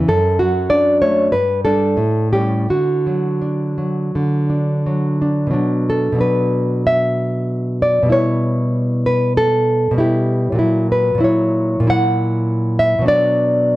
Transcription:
0.08 F#2 A4
0.39 F#3 F#4
0.70 D4 D5
1.02 A3 C#5
1.32 G2 B4
1.65 G3 D4 A4
1.97 A2
2.33 G3 C#4 G4
2.70 D3 F#4
3.06 F#3
3.42 D4
3.78 F#3
4.15 D3
4.50 D4
4.86 F#3
5.22 D4
5.47 B2 F#3
5.53 D4
5.90 A4
6.12 B2 F#3
6.18 D4 B4
6.87 E5
7.82 D5
8.03 B2 G3
8.10 E4 C#5
9.06 B4
9.37 A4
9.91 B2 G3
9.98 E4 G4
10.52 A#2 F#3
10.59 E4
10.92 B4
11.15 A#2 F#3
11.20 E4 C#5
11.80 A#2 F#3
11.87 E4 F#5
12.79 E5
12.99 B2 F#3
13.06 D4 D5

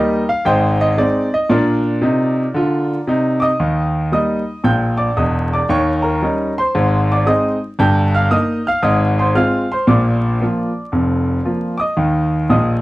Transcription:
Already playing: G3 A#3 D#4 G4 A#4 D#5
0.29 F5
0.45 G#1 G#2 C5 D#5 G5
0.81 D#5
0.98 G#3 C4 D#4 D5
1.34 D#5
1.49 A#2 D4 F4 A#4 D5
2.02 C3 D#4
2.54 D3 F4
3.07 C3 D#4
3.40 D#5 D6 D#6
3.60 D#2 D#3
4.12 G3 A#3 D#4 D#5 D#6
4.64 A#1 A#2 G5 G6
4.97 D5 D6
5.17 E1 E2 D#5 D#6
5.53 D5 D6
5.69 D#2 D#3 C#5 C#6
6.02 A#4 A#5
6.22 G3 C#4 D#4
6.58 C5 C6
6.75 G#1 G#2
7.12 D5 D6
7.26 G#3 C4 D#4 D#5 D#6
7.79 G1 G2 G5 G6
8.15 F5 F6
8.31 A#3 D#4 D#5 D#6
8.67 F5 F6
8.82 G#1 G#2 D#5 D#6
9.19 C5 C6
9.35 G#3 C4 F4 F5 F6
9.72 C5 C6
9.87 A#1 A#2 D5 D6
10.41 F3 A#3 F4
10.92 F1 F2
11.45 F3 A#3 F4
11.78 D#5 D6 D#6
11.97 D#2 D#3
12.49 A#1 A#2 D#5 D#6

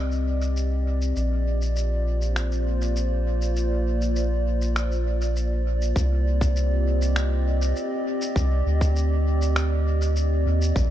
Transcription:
Already playing: C2 C4 G4 D5 D#5
0.11 shaker
0.42 shaker
0.56 shaker
1.01 shaker
1.16 A#1 A#3, shaker
1.36 F4
1.61 C5, shaker
1.76 shaker
2.22 shaker
2.36 finger snap, shaker
2.52 shaker
2.81 shaker
2.96 shaker
3.42 shaker
3.56 shaker
4.01 shaker
4.16 shaker
4.61 shaker
4.76 finger snap, shaker
4.91 shaker
5.21 shaker
5.36 shaker
5.81 shaker
5.96 C2 C4, kick, shaker
6.09 G4
6.41 kick, shaker
6.54 D#5, shaker
7.01 shaker
7.16 finger snap, shaker
7.61 shaker
7.76 shaker
8.21 shaker
8.36 C2, kick, shaker
8.66 D2
8.81 kick, shaker
8.96 shaker
9.41 shaker
9.56 finger snap, shaker
10.01 shaker
10.16 shaker
10.46 D#2
10.61 shaker
10.76 A#1 A#3, kick, shaker

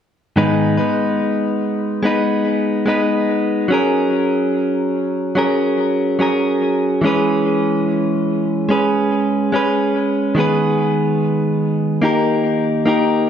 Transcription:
0.36 G#2 D#3 G#3 B3 D#4 B4
0.77 G#3 B3 D#4 B4
2.03 G#3 B3 D#4 B4
2.86 G#3 B3 D#4 B4
3.68 F#3 C#4 G#4
3.74 A#4
5.35 F#3 C#4 G#4 A#4
6.19 F#3 C#4 G#4 A#4
7.01 E3 G#3 C#4
7.06 G#4 B4
8.69 G#3 C#4 G#4 B4
9.52 G#3 C#4 G#4 B4
10.35 D#3 G#3 B3
10.39 G#4 B4
12.02 A#3 D#4 G4 A#4
12.86 A#3 D#4 G4 A#4

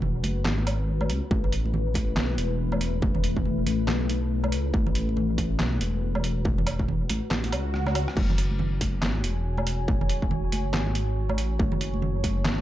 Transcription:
Already playing: E1 F#4 B4 G#5
0.02 low conga
0.24 F#1, closed hi-hat, high conga
0.45 G#1, snare, clap
0.58 high conga
0.67 closed hi-hat, low woodblock
1.01 high conga, low woodblock
1.10 C#2, closed hi-hat
1.31 A1 A3 E4, kick, high conga
1.44 low conga
1.52 closed hi-hat
1.65 high conga
1.74 low conga
1.94 kick, closed hi-hat, high conga
2.17 B1, snare, clap
2.29 high conga
2.38 E1, closed hi-hat
2.72 high conga, low woodblock
2.81 closed hi-hat
3.02 kick, high conga
3.15 low conga
3.24 closed hi-hat
3.36 kick, high conga
3.45 low conga
3.67 A1, closed hi-hat, high conga
3.88 B1, snare, clap
4.01 high conga
4.09 closed hi-hat
4.44 high conga, low woodblock
4.52 C#2, closed hi-hat
4.74 A1 F#4, kick, high conga
4.87 low conga
4.95 closed hi-hat
5.09 high conga
5.17 low conga
5.38 kick, closed hi-hat, high conga
5.59 B1, snare, clap
5.72 high conga
5.81 E1, closed hi-hat
6.15 high conga, low woodblock
6.24 closed hi-hat
6.45 kick, high conga
6.58 low conga
6.67 closed hi-hat, low woodblock
6.79 kick, high conga
6.88 low conga
7.09 A1, closed hi-hat, high conga
7.31 A1, snare, clap, swell
7.44 closed hi-hat, high conga
7.52 C#2, closed hi-hat, low woodblock
7.74 cross-stick
7.86 cross-stick, high conga, low woodblock
7.95 closed hi-hat, low woodblock
8.08 cross-stick
8.16 F#1 C#5 G#5, kick, crash, high conga
8.30 low conga
8.38 closed hi-hat
8.51 high conga
8.59 low conga
8.81 kick, closed hi-hat, high conga
9.02 G#1, snare, clap
9.15 high conga
9.24 E1, closed hi-hat
9.58 high conga, low woodblock
9.67 closed hi-hat
9.88 kick, high conga
10.01 low conga
10.09 closed hi-hat
10.22 kick, high conga
10.31 low conga
10.52 F#1, closed hi-hat, high conga
10.74 G#1, snare, clap
10.87 high conga
10.95 closed hi-hat
11.29 high conga, low woodblock
11.38 A1, closed hi-hat
11.60 F#1 A5, kick, high conga
11.72 low conga
11.81 closed hi-hat
11.94 high conga
12.02 low conga
12.24 kick, closed hi-hat, high conga
12.45 G#1, snare, clap

